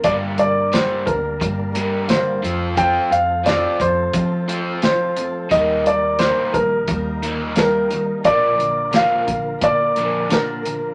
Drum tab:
HH |xxxxxxxx|xxxxxxxx|xxxxxxxx|xxxxxxxx|
SD |--o---o-|--o---o-|--o---o-|--o---o-|
BD |o--oo---|o--oo---|o--oo---|o--oo---|